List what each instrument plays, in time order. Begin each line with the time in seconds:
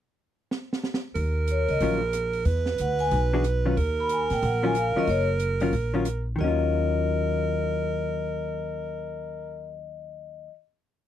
0.51 snare
0.73 snare
0.84 snare
0.94 snare
1.15 upright bass D#2, alto saxophone A#4, kick, open hi-hat
1.47 vibraphone C#5, closed hi-hat
1.68 upright bass C#2, vibraphone D#5, open hi-hat
1.80 upright bass A#1, hollow-body jazz guitar D#3 F#3 C#4 F4, kick, open hi-hat
2.13 cross-stick, closed hi-hat
2.33 open hi-hat
2.45 upright bass E2, alto saxophone B4, kick, open hi-hat
2.66 snare
2.78 upright bass D2, vibraphone F#5, closed hi-hat
2.99 vibraphone G#5, open hi-hat
3.11 upright bass B1, kick, open hi-hat
3.33 hollow-body jazz guitar E3 D4 F#4 G#4
3.44 cross-stick, closed hi-hat
3.65 hollow-body jazz guitar D#3 F#3 C#4 F4
3.77 upright bass D#2, alto saxophone A#4, kick, open hi-hat
4.00 vibraphone B5
4.09 vibraphone G#5, closed hi-hat
4.30 upright bass A#2, vibraphone G5, snare, open hi-hat
4.42 upright bass A#1, vibraphone F#5, kick, open hi-hat
4.63 hollow-body jazz guitar D#3 F#3 C#4 F4, vibraphone G#5
4.75 vibraphone F5, cross-stick, closed hi-hat
4.95 hollow-body jazz guitar D#3 F#3 C#4 F4, vibraphone D#5, muted upright bass stroke
5.07 upright bass F#1, vibraphone C#5, kick, open hi-hat
5.39 closed hi-hat
5.60 hollow-body jazz guitar D#3 F#3 C#4 F4, open hi-hat
5.73 upright bass A#1, kick, open hi-hat
5.94 hollow-body jazz guitar D#3 F#3 C#4 F4
6.05 cross-stick, closed hi-hat
6.36 upright bass D#2, hollow-body jazz guitar D#3, alto saxophone A#4
6.40 hollow-body jazz guitar F#3 C#4, vibraphone D#5
6.48 hollow-body jazz guitar F4